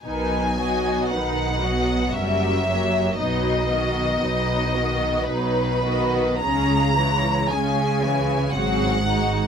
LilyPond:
<<
  \new Staff \with { instrumentName = "Violin section" } { \time 3/4 \key b \major \tempo 4 = 58 gis''4 fis''4 e''4 | dis''2 b'4 | ais''4 gis''4 fis''4 | }
  \new Staff \with { instrumentName = "Violin section" } { \time 3/4 \key b \major <dis' b'>8 <fis' dis''>8 <dis' b'>8 <fis' dis''>8 <fis' ais'>8 <g' cis''>8 | <dis' b'>8 <fis' dis''>8 <dis' b'>8 <fis' dis''>8 <dis' b'>8 <fis' dis''>8 | <cis' gis'>8 <e' cis''>8 <cis' gis'>8 <e' cis''>8 <fis' gis'>8 <dis' fis'>8 | }
  \new Staff \with { instrumentName = "Viola section" } { \clef bass \time 3/4 \key b \major <dis dis'>8 <fis b>8 <dis dis'>8 <fis b>8 <g cis'>8 <fis ais>8 | <fis dis'>8 <dis b>8 <fis dis'>8 <dis b>8 <fis dis'>8 <dis b>8 | <gis cis'>8 <e gis>8 <gis cis'>8 <e gis>8 <fis bis>8 <gis dis'>8 | }
  \new Staff \with { instrumentName = "Cello section" } { \clef bass \time 3/4 \key b \major b,4 b,4 fis,4 | b,4 b,4 b,4 | cis4 cis4 gis,4 | }
  \new Staff \with { instrumentName = "Double bass section" } { \clef bass \time 3/4 \key b \major b,,4 b,,4 fis,,4 | b,,4 b,,4 b,,4 | cis,4 cis,4 gis,,4 | }
>>